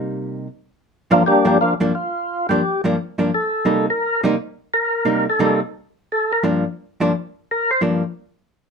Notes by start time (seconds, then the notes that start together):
Already playing: C3 G3 A#3 D#4
1.11 G2 F3 A#3 D4 F4
1.26 G3 A#3 D4 G4
1.45 G2 F3 G3 A#3 D4 G4
1.61 F3 A#3 D4 F4
1.80 G2 F3 A#3 D4
1.95 F4
2.49 G2 F3 A#3 D4 G4
2.84 G2 F3 A#3 D4
3.18 G2 F3 A#3 D4
3.34 A4
3.65 C3 G3 A#3 D#4
3.90 A#4
4.24 C3 G3 A#3 D#4
4.74 A#4
5.05 C3 G3 A#3 D#4
5.30 A4
5.39 C3 G3 A#3 D#4
6.12 A4
6.33 A#4
6.44 G2 F3 A#3 D4
7.00 G2 F3 A#3 D4
7.51 A#4
7.71 C5
7.81 G2 F3 A#3 D4